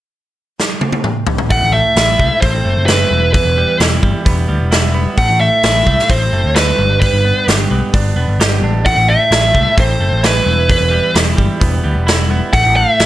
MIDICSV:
0, 0, Header, 1, 5, 480
1, 0, Start_track
1, 0, Tempo, 459418
1, 1577, Time_signature, 4, 2, 24, 8
1, 13644, End_track
2, 0, Start_track
2, 0, Title_t, "Lead electric guitar"
2, 0, Program_c, 0, 29
2, 1583, Note_on_c, 0, 78, 84
2, 1807, Note_off_c, 0, 78, 0
2, 1812, Note_on_c, 0, 76, 87
2, 2492, Note_off_c, 0, 76, 0
2, 2517, Note_on_c, 0, 72, 75
2, 2987, Note_off_c, 0, 72, 0
2, 2991, Note_on_c, 0, 71, 67
2, 3449, Note_off_c, 0, 71, 0
2, 3482, Note_on_c, 0, 71, 68
2, 3935, Note_off_c, 0, 71, 0
2, 5414, Note_on_c, 0, 78, 97
2, 5645, Note_off_c, 0, 78, 0
2, 5649, Note_on_c, 0, 76, 90
2, 6371, Note_on_c, 0, 72, 84
2, 6393, Note_off_c, 0, 76, 0
2, 6848, Note_off_c, 0, 72, 0
2, 6852, Note_on_c, 0, 71, 72
2, 7299, Note_off_c, 0, 71, 0
2, 7319, Note_on_c, 0, 71, 67
2, 7772, Note_off_c, 0, 71, 0
2, 9257, Note_on_c, 0, 78, 97
2, 9501, Note_off_c, 0, 78, 0
2, 9505, Note_on_c, 0, 76, 88
2, 10178, Note_off_c, 0, 76, 0
2, 10243, Note_on_c, 0, 72, 87
2, 10718, Note_off_c, 0, 72, 0
2, 10722, Note_on_c, 0, 71, 72
2, 11156, Note_off_c, 0, 71, 0
2, 11194, Note_on_c, 0, 71, 64
2, 11632, Note_off_c, 0, 71, 0
2, 13093, Note_on_c, 0, 78, 93
2, 13331, Note_off_c, 0, 78, 0
2, 13335, Note_on_c, 0, 76, 94
2, 13644, Note_off_c, 0, 76, 0
2, 13644, End_track
3, 0, Start_track
3, 0, Title_t, "Clean electric guitar"
3, 0, Program_c, 1, 27
3, 1574, Note_on_c, 1, 45, 62
3, 1821, Note_on_c, 1, 57, 50
3, 2054, Note_on_c, 1, 64, 64
3, 2286, Note_off_c, 1, 57, 0
3, 2298, Note_on_c, 1, 57, 54
3, 2536, Note_on_c, 1, 60, 61
3, 2755, Note_off_c, 1, 57, 0
3, 2767, Note_on_c, 1, 57, 59
3, 2775, Note_off_c, 1, 45, 0
3, 3006, Note_off_c, 1, 64, 0
3, 3010, Note_on_c, 1, 64, 65
3, 3246, Note_on_c, 1, 40, 62
3, 3252, Note_off_c, 1, 57, 0
3, 3256, Note_off_c, 1, 60, 0
3, 3479, Note_off_c, 1, 40, 0
3, 3491, Note_on_c, 1, 40, 62
3, 3737, Note_on_c, 1, 55, 51
3, 3959, Note_off_c, 1, 64, 0
3, 3964, Note_on_c, 1, 64, 60
3, 4196, Note_off_c, 1, 55, 0
3, 4209, Note_on_c, 1, 55, 62
3, 4443, Note_on_c, 1, 59, 60
3, 4670, Note_off_c, 1, 55, 0
3, 4683, Note_on_c, 1, 55, 53
3, 4693, Note_off_c, 1, 40, 0
3, 4913, Note_off_c, 1, 64, 0
3, 4925, Note_on_c, 1, 64, 72
3, 5153, Note_off_c, 1, 59, 0
3, 5166, Note_on_c, 1, 59, 63
3, 5408, Note_off_c, 1, 55, 0
3, 5410, Note_off_c, 1, 59, 0
3, 5410, Note_off_c, 1, 64, 0
3, 5415, Note_on_c, 1, 45, 66
3, 5654, Note_on_c, 1, 57, 59
3, 5894, Note_on_c, 1, 64, 64
3, 6124, Note_off_c, 1, 57, 0
3, 6137, Note_on_c, 1, 57, 60
3, 6378, Note_on_c, 1, 60, 60
3, 6601, Note_off_c, 1, 57, 0
3, 6613, Note_on_c, 1, 57, 53
3, 6614, Note_off_c, 1, 45, 0
3, 6835, Note_off_c, 1, 64, 0
3, 6848, Note_on_c, 1, 64, 72
3, 7086, Note_on_c, 1, 43, 59
3, 7090, Note_off_c, 1, 64, 0
3, 7093, Note_off_c, 1, 57, 0
3, 7095, Note_off_c, 1, 60, 0
3, 7316, Note_off_c, 1, 43, 0
3, 7329, Note_on_c, 1, 43, 60
3, 7576, Note_on_c, 1, 59, 51
3, 7813, Note_on_c, 1, 67, 62
3, 8042, Note_off_c, 1, 59, 0
3, 8055, Note_on_c, 1, 59, 53
3, 8291, Note_on_c, 1, 62, 62
3, 8517, Note_off_c, 1, 59, 0
3, 8529, Note_on_c, 1, 59, 57
3, 8531, Note_off_c, 1, 43, 0
3, 8763, Note_off_c, 1, 67, 0
3, 8776, Note_on_c, 1, 67, 70
3, 9011, Note_off_c, 1, 62, 0
3, 9024, Note_on_c, 1, 62, 61
3, 9251, Note_off_c, 1, 59, 0
3, 9251, Note_on_c, 1, 45, 61
3, 9255, Note_off_c, 1, 67, 0
3, 9258, Note_off_c, 1, 62, 0
3, 9502, Note_on_c, 1, 57, 55
3, 9730, Note_on_c, 1, 64, 64
3, 9954, Note_off_c, 1, 57, 0
3, 9966, Note_on_c, 1, 57, 62
3, 10209, Note_on_c, 1, 60, 60
3, 10440, Note_off_c, 1, 57, 0
3, 10453, Note_off_c, 1, 45, 0
3, 10453, Note_on_c, 1, 57, 53
3, 10688, Note_off_c, 1, 64, 0
3, 10692, Note_on_c, 1, 64, 70
3, 10924, Note_on_c, 1, 40, 64
3, 10932, Note_off_c, 1, 60, 0
3, 10934, Note_off_c, 1, 57, 0
3, 11153, Note_off_c, 1, 40, 0
3, 11166, Note_on_c, 1, 40, 63
3, 11401, Note_on_c, 1, 55, 55
3, 11641, Note_off_c, 1, 64, 0
3, 11646, Note_on_c, 1, 64, 66
3, 11867, Note_off_c, 1, 55, 0
3, 11880, Note_on_c, 1, 55, 60
3, 12119, Note_on_c, 1, 59, 58
3, 12355, Note_off_c, 1, 55, 0
3, 12367, Note_on_c, 1, 55, 58
3, 12371, Note_off_c, 1, 40, 0
3, 12595, Note_off_c, 1, 64, 0
3, 12608, Note_on_c, 1, 64, 72
3, 12840, Note_off_c, 1, 59, 0
3, 12853, Note_on_c, 1, 59, 69
3, 13088, Note_on_c, 1, 45, 65
3, 13092, Note_off_c, 1, 55, 0
3, 13092, Note_off_c, 1, 64, 0
3, 13095, Note_off_c, 1, 59, 0
3, 13338, Note_on_c, 1, 57, 56
3, 13579, Note_on_c, 1, 64, 68
3, 13644, Note_off_c, 1, 45, 0
3, 13644, Note_off_c, 1, 57, 0
3, 13644, Note_off_c, 1, 64, 0
3, 13644, End_track
4, 0, Start_track
4, 0, Title_t, "Picked electric bass"
4, 0, Program_c, 2, 34
4, 1575, Note_on_c, 2, 33, 85
4, 1666, Note_off_c, 2, 33, 0
4, 1702, Note_on_c, 2, 33, 67
4, 1881, Note_off_c, 2, 33, 0
4, 2046, Note_on_c, 2, 33, 67
4, 2231, Note_off_c, 2, 33, 0
4, 2296, Note_on_c, 2, 36, 79
4, 2386, Note_off_c, 2, 36, 0
4, 2532, Note_on_c, 2, 33, 73
4, 2715, Note_off_c, 2, 33, 0
4, 2774, Note_on_c, 2, 30, 75
4, 2865, Note_off_c, 2, 30, 0
4, 2896, Note_on_c, 2, 30, 67
4, 3167, Note_off_c, 2, 30, 0
4, 3250, Note_on_c, 2, 28, 72
4, 3523, Note_off_c, 2, 28, 0
4, 3608, Note_on_c, 2, 28, 73
4, 3791, Note_off_c, 2, 28, 0
4, 3972, Note_on_c, 2, 28, 67
4, 4154, Note_off_c, 2, 28, 0
4, 4212, Note_on_c, 2, 31, 82
4, 4303, Note_off_c, 2, 31, 0
4, 4456, Note_on_c, 2, 28, 85
4, 4637, Note_off_c, 2, 28, 0
4, 4692, Note_on_c, 2, 38, 81
4, 4783, Note_off_c, 2, 38, 0
4, 4815, Note_on_c, 2, 28, 69
4, 5266, Note_off_c, 2, 28, 0
4, 5409, Note_on_c, 2, 33, 91
4, 5501, Note_off_c, 2, 33, 0
4, 5533, Note_on_c, 2, 33, 71
4, 5714, Note_off_c, 2, 33, 0
4, 5889, Note_on_c, 2, 33, 71
4, 6072, Note_off_c, 2, 33, 0
4, 6131, Note_on_c, 2, 36, 85
4, 6223, Note_off_c, 2, 36, 0
4, 6370, Note_on_c, 2, 33, 79
4, 6552, Note_off_c, 2, 33, 0
4, 6614, Note_on_c, 2, 30, 78
4, 6704, Note_off_c, 2, 30, 0
4, 6736, Note_on_c, 2, 38, 69
4, 7006, Note_off_c, 2, 38, 0
4, 7093, Note_on_c, 2, 31, 81
4, 7364, Note_off_c, 2, 31, 0
4, 7452, Note_on_c, 2, 31, 71
4, 7633, Note_off_c, 2, 31, 0
4, 7815, Note_on_c, 2, 31, 71
4, 7995, Note_off_c, 2, 31, 0
4, 8054, Note_on_c, 2, 35, 84
4, 8144, Note_off_c, 2, 35, 0
4, 8294, Note_on_c, 2, 31, 82
4, 8474, Note_off_c, 2, 31, 0
4, 8525, Note_on_c, 2, 28, 74
4, 8618, Note_off_c, 2, 28, 0
4, 8653, Note_on_c, 2, 31, 69
4, 8743, Note_off_c, 2, 31, 0
4, 8772, Note_on_c, 2, 31, 75
4, 8989, Note_off_c, 2, 31, 0
4, 9008, Note_on_c, 2, 33, 67
4, 9227, Note_off_c, 2, 33, 0
4, 9252, Note_on_c, 2, 33, 90
4, 9343, Note_off_c, 2, 33, 0
4, 9368, Note_on_c, 2, 33, 69
4, 9551, Note_off_c, 2, 33, 0
4, 9727, Note_on_c, 2, 33, 71
4, 9910, Note_off_c, 2, 33, 0
4, 9977, Note_on_c, 2, 36, 85
4, 10066, Note_off_c, 2, 36, 0
4, 10219, Note_on_c, 2, 33, 74
4, 10398, Note_off_c, 2, 33, 0
4, 10454, Note_on_c, 2, 30, 75
4, 10544, Note_off_c, 2, 30, 0
4, 10582, Note_on_c, 2, 33, 70
4, 10850, Note_off_c, 2, 33, 0
4, 10934, Note_on_c, 2, 28, 79
4, 11205, Note_off_c, 2, 28, 0
4, 11289, Note_on_c, 2, 28, 67
4, 11472, Note_off_c, 2, 28, 0
4, 11654, Note_on_c, 2, 28, 75
4, 11835, Note_off_c, 2, 28, 0
4, 11894, Note_on_c, 2, 31, 83
4, 11985, Note_off_c, 2, 31, 0
4, 12136, Note_on_c, 2, 28, 80
4, 12317, Note_off_c, 2, 28, 0
4, 12374, Note_on_c, 2, 38, 75
4, 12465, Note_off_c, 2, 38, 0
4, 12490, Note_on_c, 2, 28, 70
4, 12944, Note_off_c, 2, 28, 0
4, 13094, Note_on_c, 2, 33, 91
4, 13185, Note_off_c, 2, 33, 0
4, 13223, Note_on_c, 2, 33, 75
4, 13402, Note_off_c, 2, 33, 0
4, 13585, Note_on_c, 2, 33, 77
4, 13644, Note_off_c, 2, 33, 0
4, 13644, End_track
5, 0, Start_track
5, 0, Title_t, "Drums"
5, 623, Note_on_c, 9, 38, 54
5, 727, Note_off_c, 9, 38, 0
5, 848, Note_on_c, 9, 48, 68
5, 953, Note_off_c, 9, 48, 0
5, 966, Note_on_c, 9, 48, 68
5, 1071, Note_off_c, 9, 48, 0
5, 1086, Note_on_c, 9, 47, 67
5, 1191, Note_off_c, 9, 47, 0
5, 1322, Note_on_c, 9, 43, 82
5, 1427, Note_off_c, 9, 43, 0
5, 1446, Note_on_c, 9, 43, 88
5, 1551, Note_off_c, 9, 43, 0
5, 1570, Note_on_c, 9, 46, 42
5, 1573, Note_on_c, 9, 36, 93
5, 1675, Note_off_c, 9, 46, 0
5, 1678, Note_off_c, 9, 36, 0
5, 2051, Note_on_c, 9, 46, 45
5, 2059, Note_on_c, 9, 38, 96
5, 2155, Note_off_c, 9, 46, 0
5, 2163, Note_off_c, 9, 38, 0
5, 2293, Note_on_c, 9, 36, 66
5, 2397, Note_off_c, 9, 36, 0
5, 2532, Note_on_c, 9, 46, 41
5, 2533, Note_on_c, 9, 36, 89
5, 2637, Note_off_c, 9, 46, 0
5, 2638, Note_off_c, 9, 36, 0
5, 3007, Note_on_c, 9, 46, 45
5, 3015, Note_on_c, 9, 38, 94
5, 3111, Note_off_c, 9, 46, 0
5, 3120, Note_off_c, 9, 38, 0
5, 3493, Note_on_c, 9, 36, 95
5, 3493, Note_on_c, 9, 46, 44
5, 3597, Note_off_c, 9, 36, 0
5, 3597, Note_off_c, 9, 46, 0
5, 3971, Note_on_c, 9, 46, 42
5, 3980, Note_on_c, 9, 38, 100
5, 4076, Note_off_c, 9, 46, 0
5, 4084, Note_off_c, 9, 38, 0
5, 4210, Note_on_c, 9, 36, 60
5, 4315, Note_off_c, 9, 36, 0
5, 4452, Note_on_c, 9, 36, 89
5, 4457, Note_on_c, 9, 46, 40
5, 4556, Note_off_c, 9, 36, 0
5, 4561, Note_off_c, 9, 46, 0
5, 4929, Note_on_c, 9, 46, 40
5, 4937, Note_on_c, 9, 38, 90
5, 5033, Note_off_c, 9, 46, 0
5, 5041, Note_off_c, 9, 38, 0
5, 5406, Note_on_c, 9, 46, 42
5, 5408, Note_on_c, 9, 36, 95
5, 5511, Note_off_c, 9, 46, 0
5, 5513, Note_off_c, 9, 36, 0
5, 5884, Note_on_c, 9, 46, 45
5, 5892, Note_on_c, 9, 38, 100
5, 5988, Note_off_c, 9, 46, 0
5, 5997, Note_off_c, 9, 38, 0
5, 6129, Note_on_c, 9, 36, 59
5, 6234, Note_off_c, 9, 36, 0
5, 6261, Note_on_c, 9, 38, 28
5, 6365, Note_off_c, 9, 38, 0
5, 6369, Note_on_c, 9, 36, 93
5, 6372, Note_on_c, 9, 46, 43
5, 6474, Note_off_c, 9, 36, 0
5, 6476, Note_off_c, 9, 46, 0
5, 6849, Note_on_c, 9, 46, 44
5, 6857, Note_on_c, 9, 38, 93
5, 6953, Note_off_c, 9, 46, 0
5, 6962, Note_off_c, 9, 38, 0
5, 7331, Note_on_c, 9, 36, 92
5, 7334, Note_on_c, 9, 46, 48
5, 7436, Note_off_c, 9, 36, 0
5, 7439, Note_off_c, 9, 46, 0
5, 7816, Note_on_c, 9, 46, 50
5, 7824, Note_on_c, 9, 38, 92
5, 7920, Note_off_c, 9, 46, 0
5, 7928, Note_off_c, 9, 38, 0
5, 8294, Note_on_c, 9, 36, 86
5, 8296, Note_on_c, 9, 46, 40
5, 8399, Note_off_c, 9, 36, 0
5, 8400, Note_off_c, 9, 46, 0
5, 8780, Note_on_c, 9, 46, 42
5, 8788, Note_on_c, 9, 38, 96
5, 8884, Note_off_c, 9, 46, 0
5, 8893, Note_off_c, 9, 38, 0
5, 9255, Note_on_c, 9, 36, 92
5, 9259, Note_on_c, 9, 46, 41
5, 9359, Note_off_c, 9, 36, 0
5, 9364, Note_off_c, 9, 46, 0
5, 9733, Note_on_c, 9, 46, 45
5, 9742, Note_on_c, 9, 38, 103
5, 9838, Note_off_c, 9, 46, 0
5, 9846, Note_off_c, 9, 38, 0
5, 9975, Note_on_c, 9, 36, 65
5, 10079, Note_off_c, 9, 36, 0
5, 10215, Note_on_c, 9, 36, 96
5, 10216, Note_on_c, 9, 46, 39
5, 10319, Note_off_c, 9, 36, 0
5, 10321, Note_off_c, 9, 46, 0
5, 10693, Note_on_c, 9, 46, 46
5, 10702, Note_on_c, 9, 38, 99
5, 10798, Note_off_c, 9, 46, 0
5, 10806, Note_off_c, 9, 38, 0
5, 11175, Note_on_c, 9, 36, 99
5, 11177, Note_on_c, 9, 46, 46
5, 11279, Note_off_c, 9, 36, 0
5, 11281, Note_off_c, 9, 46, 0
5, 11652, Note_on_c, 9, 46, 50
5, 11661, Note_on_c, 9, 38, 104
5, 11757, Note_off_c, 9, 46, 0
5, 11765, Note_off_c, 9, 38, 0
5, 11894, Note_on_c, 9, 36, 64
5, 11998, Note_off_c, 9, 36, 0
5, 12135, Note_on_c, 9, 36, 85
5, 12141, Note_on_c, 9, 46, 44
5, 12239, Note_off_c, 9, 36, 0
5, 12246, Note_off_c, 9, 46, 0
5, 12621, Note_on_c, 9, 46, 41
5, 12630, Note_on_c, 9, 38, 94
5, 12726, Note_off_c, 9, 46, 0
5, 12734, Note_off_c, 9, 38, 0
5, 13093, Note_on_c, 9, 46, 44
5, 13095, Note_on_c, 9, 36, 93
5, 13198, Note_off_c, 9, 46, 0
5, 13200, Note_off_c, 9, 36, 0
5, 13578, Note_on_c, 9, 46, 43
5, 13586, Note_on_c, 9, 38, 100
5, 13644, Note_off_c, 9, 38, 0
5, 13644, Note_off_c, 9, 46, 0
5, 13644, End_track
0, 0, End_of_file